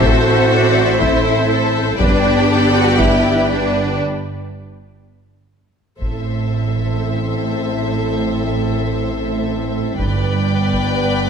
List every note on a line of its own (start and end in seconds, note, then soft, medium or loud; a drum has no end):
0.00 2.00 A1 medium
0.00 1.95 C4 medium
0.00 2.00 C4 medium
0.00 1.96 E4 medium
0.00 2.00 E4 medium
0.00 1.01 F#4 medium
0.00 0.48 A4 medium
0.00 1.96 A4 medium
0.00 2.00 A4 medium
0.00 1.96 C5 medium
0.00 1.96 E5 medium
0.00 2.00 E5 medium
0.00 taiko medium
0.52 1.01 D5 medium
1.00 1.50 E4 medium
1.00 1.50 C5 medium
1.00 taiko medium
1.49 1.98 A4 medium
1.98 3.95 G1 medium
1.98 3.99 B3 medium
1.98 3.96 B3 medium
1.98 2.70 D4 medium
1.98 4.00 D4 medium
1.98 3.96 D4 medium
1.98 3.96 G4 medium
1.98 4.00 G4 medium
1.98 2.47 B4 medium
1.98 3.96 B4 medium
1.98 3.95 D5 medium
1.98 3.95 G5 medium
1.98 4.00 G5 medium
1.98 taiko medium
2.49 2.99 A4 medium
2.74 2.99 F#4 medium
2.97 3.49 E4 medium
2.97 3.48 G4 medium
2.97 taiko medium
3.49 3.98 D4 medium
3.49 3.99 B4 medium
6.00 9.95 A1 soft
6.00 9.95 A2 soft
6.00 9.95 C4 soft
6.00 9.95 E4 soft
6.00 9.95 A4 soft
6.00 9.95 C5 soft
6.00 9.96 E5 soft
6.00 taiko soft
6.77 taiko soft
9.98 11.30 G1 medium
9.98 11.30 G2 medium
9.98 11.30 B3 medium
9.98 11.30 D4 soft
9.98 11.30 B4 medium
9.98 11.30 D5 medium
9.98 11.30 G5 soft
9.98 taiko soft
10.74 taiko soft